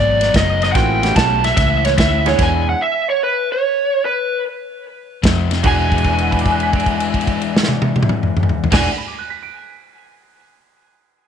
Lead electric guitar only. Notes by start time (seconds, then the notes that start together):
Already playing: D5
0.37 D#5
0.64 D#5
0.72 F#5 G5
1.17 A5
1.45 E5
1.57 E5
1.86 C#5
1.99 E5
2.28 C#5
2.43 G#5
2.69 F#5
2.82 E5
3.10 C#5
3.23 B4
3.52 C#5
4.05 B4
5.67 G#5
8.74 G#5